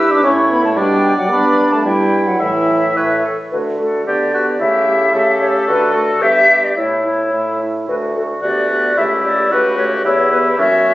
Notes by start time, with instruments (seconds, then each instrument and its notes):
Already playing: bassoon G2, french horn E4, clarinet G4, oboe B4, flute E6
0.11 french horn D4, flute D6
0.23 bassoon A2, french horn C#4, clarinet E4, oboe C#5, flute C#6
0.50 french horn B3, flute B5
0.65 french horn A3, flute A5
0.76 bassoon B2, french horn G3, clarinet D4, oboe D5, flute G5
1.18 french horn F#3, flute F#5
1.30 bassoon G2, french horn B3, clarinet D4, flute B5
1.72 french horn A3, flute A5
1.85 bassoon G2, french horn G3, clarinet E4, flute G5
2.26 french horn F#3, flute F#5
2.39 bassoon A2, french horn E3, clarinet E4, oboe E5, flute E5
2.96 bassoon A2, clarinet B4, oboe C#5
3.24 clarinet A4
3.52 bassoon D3, french horn A3, clarinet F#4, flute B4
3.79 french horn A3, clarinet F#4, flute A4
4.06 bassoon D3, french horn B3, clarinet G4, oboe G4, flute D5
4.33 french horn B3, oboe F#4, clarinet G4
4.60 bassoon C#3, french horn A3, oboe E4, clarinet G4, flute E5
4.87 french horn A3, clarinet G4
5.14 bassoon C#3, french horn A3, clarinet G4, oboe A4
5.40 french horn A3, clarinet G4, flute C#5
5.67 bassoon D3, french horn A3, clarinet F#4, flute B4
5.94 french horn A3, clarinet F#4, flute A4
6.21 bassoon G2, french horn B3, clarinet G4, oboe G4, flute E5
6.48 french horn B3, clarinet G4
6.65 flute D5
6.76 bassoon A2, french horn A3, clarinet E4, oboe E4, flute C#5
7.04 french horn A3, clarinet E4
7.32 bassoon A2, french horn A3, clarinet E4
7.60 french horn A3, clarinet E4
7.88 bassoon D2, french horn A3, clarinet F#4, flute B4
8.15 french horn A3, clarinet F#4, flute A4
8.42 bassoon D2, french horn B3, oboe F#4, clarinet G4, flute D5
8.70 french horn B3, clarinet G4
8.96 bassoon C#2, french horn A3, oboe E4, clarinet G4, flute E5
9.23 french horn A3, clarinet G4, flute D5
9.50 bassoon C#2, french horn A3, oboe F#4, clarinet G4, flute B4
9.76 french horn A3, clarinet G4, flute C#5
10.04 bassoon E2, french horn B3, oboe E4, clarinet G4, flute C#5
10.31 french horn B3, clarinet G4, flute B4
10.58 bassoon F#2, french horn A#3, oboe C#4, clarinet F#4, flute E5
10.86 french horn A#3, clarinet F#4